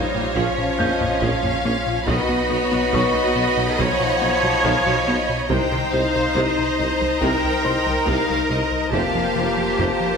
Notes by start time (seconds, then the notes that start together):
Already playing: A#1 G3 D#4 F4 C5 C#5 F5
0.14 A#1 A#2 A#3
0.35 A#1 A#2 F3 C#4 C#5, taiko
0.58 A#2
0.78 A#1 A#3 C#4 D#5 G6, taiko low
1.00 A#1 A#2 A#3, taiko low
1.21 A#1 A#2 F3 F5, taiko
1.43 A#1 A#2 A#3, taiko low
1.64 A#1 A#3 C#4
1.87 A#2
2.06 B1 B2 D#3 B3 D#4 F#4 D#5 B5, taiko
2.29 B1 F#3 B3
2.49 B1 B3 C#5
2.72 B1 F#3 B3
2.93 B1 B2 D#3 C#5 D#5 C#6, taiko
3.15 B3
3.35 B1 B2 B3
3.57 B1 B2 F#3
3.79 B1 B2 D#3 F3 C#5 F#5, taiko
4.00 B2
4.21 B1 B3
4.43 B1 B2 F#3
4.64 B1 B2 D#3 F5, taiko
4.86 B1 B2 F#3
5.07 B1 B3 D#5
5.29 B2
5.49 C2 C3 D#4 C5 G5 A#5, taiko
5.71 C2 C3 D#3
5.92 C2 C3 G3 F5
6.14 C2 C3 D#3
6.34 C2 C3 D#5, taiko
6.58 C3
6.78 C2 G3
7.00 C2 D#3
7.21 C2 C3 D#4 A#4 G5, taiko
7.45 C2
7.64 C2 C3 G3 C5 C6
7.85 C2 D#3
8.06 C2 C3 F5, taiko
8.28 C2 D#3
8.50 C2 C3 G3 D#5
8.72 C2
8.92 F1 F2 C3 A#3 F4 G4 C5 F5 A5, taiko
9.14 F1 C3 F3
9.35 F1 F3
9.57 F1 C3 F3
9.78 F1 F2 C3 C5, taiko
10.00 F3